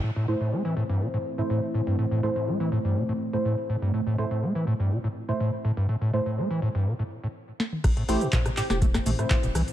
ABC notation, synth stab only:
X:1
M:4/4
L:1/16
Q:1/4=123
K:Am
V:1 name="Synth stab"
z2 [A,Ec] z8 [A,Ec] z4 | z2 [A,Ec] z8 [A,Ec] z4 | z2 [A,Ec] z8 [A,Ec] z4 | z2 [A,Ec] z12 z |
z2 [A,Ec] z8 [A,Ec] z4 |]